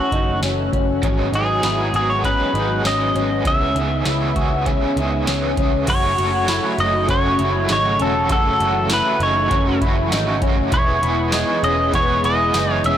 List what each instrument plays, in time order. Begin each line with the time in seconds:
Already playing: analog synth pad E3 A3 C#4 F#4, clean electric guitar C#4, pedal steel guitar F#4
0.12 picked electric bass F#1, clean electric guitar D#4, kick, closed hi-hat
0.42 picked electric bass F#1, clean electric guitar C#4, snare, closed hi-hat
0.72 picked electric bass F#1, clean electric guitar C#4, kick, closed hi-hat
1.02 picked electric bass G#1, overdriven electric guitar G#2 D#3 F#3 B3 D#4 G#4, analog synth pad F#3 G#3 B3, clean electric guitar C#4, kick, closed hi-hat
1.32 picked electric bass G#1, overdriven electric guitar F#3 B3 D#4 G#4, clean electric guitar D#4, pedal steel guitar G#4, closed hi-hat
1.62 picked electric bass G#1, overdriven electric guitar F#3 B3 D#4 G#4, clean electric guitar E4, snare, closed hi-hat
1.93 picked electric bass G#1, overdriven electric guitar F#3 B3 D#4 G#4, clean electric guitar F#4, pedal steel guitar G#4, closed hi-hat
2.10 pedal steel guitar C#5
2.23 overdriven electric guitar G#2 D#3 F#3 B3 D#4 G#4, clean electric guitar C#4, pedal steel guitar B4, kick, closed hi-hat
2.53 picked electric bass G#1, overdriven electric guitar F#3 B3 D#4 G#4, clean electric guitar D#4, closed hi-hat
2.83 picked electric bass G#1, overdriven electric guitar F#3 B3 D#4 G#4, clean electric guitar C#4, pedal steel guitar D#5, snare, closed hi-hat
3.14 picked electric bass G#1, overdriven electric guitar F#3 B3 D#4 G#4, clean electric guitar C#4, closed hi-hat
3.45 picked electric bass C#2, overdriven electric guitar C#3 E3 B3 C#4 G#4, analog synth pad C#3 E5, clean electric guitar C#4, pedal steel guitar E5, kick, closed hi-hat
3.74 picked electric bass C#2, clean electric guitar D#3, overdriven electric guitar B3 C#4 G#4, closed hi-hat
4.04 picked electric bass C#2, overdriven electric guitar E3 B3 C#4 G#4, clean electric guitar E4, snare, closed hi-hat
4.35 picked electric bass C#2, overdriven electric guitar B3 C#4 G#4, clean electric guitar F#4, kick, closed hi-hat
4.66 overdriven electric guitar C#3 E3 B3 C#4 G#4, clean electric guitar C#4, kick, closed hi-hat
4.96 picked electric bass C#2, clean electric guitar D#3, overdriven electric guitar B3 C#4 G#4, closed hi-hat
5.26 picked electric bass C#2, overdriven electric guitar E3 B3 C#4 G#4, clean electric guitar C#4, snare, closed hi-hat
5.56 picked electric bass C#2, overdriven electric guitar B3 C#4 G#4, clean electric guitar C#4, kick, closed hi-hat
5.87 picked electric bass F#1, overdriven electric guitar F#2 C#3 F#3 A3 C#4 F#4, analog synth pad C#3 F#3 A3 F#4, clean electric guitar F#4, pedal steel guitar C#5, kick, closed hi-hat, crash
6.16 picked electric bass F#1, overdriven electric guitar F#3 A3 C#4 F#4, clean electric guitar F#4, closed hi-hat
6.47 overdriven electric guitar F#2 C#3 F#3 A3 C#4 F#4, clean electric guitar E4, snare, closed hi-hat, tambourine
6.77 picked electric bass F#1, overdriven electric guitar F#3 A3 C#4 F#4, clean electric guitar D#4, pedal steel guitar D#5, closed hi-hat
7.08 picked electric bass F#1, overdriven electric guitar F#3 A3 C#4 F#4, clean electric guitar C#4, pedal steel guitar C#5, kick, closed hi-hat
7.37 picked electric bass F#1, overdriven electric guitar F#3 A3 C#4 F#4, clean electric guitar E4, closed hi-hat
7.68 picked electric bass G#1, overdriven electric guitar F#2 C#3 F#3 A3 C#4 F#4, clean electric guitar D#4, snare, closed hi-hat, tambourine
7.73 pedal steel guitar C#5
7.99 picked electric bass E1, overdriven electric guitar F#3 A3 C#4 F#4, clean electric guitar C#4, pedal steel guitar A4, closed hi-hat
8.28 picked electric bass F#1, overdriven electric guitar F#2 C#3 F#3 A3 C#4 F#4, analog synth pad E3, clean electric guitar F#4, kick, closed hi-hat
8.32 pedal steel guitar A4
8.59 picked electric bass F#1, overdriven electric guitar F#3 A3 C#4 F#4, clean electric guitar F#4, closed hi-hat
8.90 overdriven electric guitar F#2 C#3 F#3 A3 C#4 F#4, clean electric guitar E4, pedal steel guitar B4, snare, closed hi-hat, tambourine
9.20 picked electric bass F#1, overdriven electric guitar A3 C#4 F#4, clean electric guitar D#4, pedal steel guitar C#5, closed hi-hat
9.25 overdriven electric guitar F#3
9.51 picked electric bass F#1, overdriven electric guitar F#3 A3 C#4 F#4, clean electric guitar C#4, kick, closed hi-hat
9.81 picked electric bass F#1, overdriven electric guitar F#3 A3 C#4 F#4, clean electric guitar E4, kick, closed hi-hat
10.11 picked electric bass G#1, overdriven electric guitar F#2 C#3 F#3 A3 C#4 F#4, clean electric guitar D#4, snare, closed hi-hat, tambourine
10.42 picked electric bass F#1, overdriven electric guitar F#3 A3 C#4 F#4, clean electric guitar C#4, kick, closed hi-hat
10.72 picked electric bass E1, overdriven electric guitar E3 B3 E4 G#4, analog synth pad E3 G#3 B3 G#4, clean electric guitar E4, pedal steel guitar C#5, kick, closed hi-hat
11.02 picked electric bass E1, overdriven electric guitar B3 E4 G#4, clean electric guitar E4, closed hi-hat
11.32 overdriven electric guitar E3 B3 E4 G#4, clean electric guitar D#4, snare, closed hi-hat, tambourine
11.62 picked electric bass E1, overdriven electric guitar B3 E4 G#4, clean electric guitar C#4, pedal steel guitar D#5, closed hi-hat
11.92 picked electric bass E1, overdriven electric guitar E3 B3 E4 G#4, clean electric guitar B3, pedal steel guitar C#5, kick, closed hi-hat
12.23 picked electric bass E1, overdriven electric guitar B3 E4 G#4, clean electric guitar E4, pedal steel guitar D#5, closed hi-hat
12.53 picked electric bass F#1, overdriven electric guitar E3 B3 E4 G#4, clean electric guitar D#4, snare, closed hi-hat, tambourine
12.72 pedal steel guitar C#5
12.83 picked electric bass E1, overdriven electric guitar B3 E4 G#4, clean electric guitar C#4, pedal steel guitar E5, closed hi-hat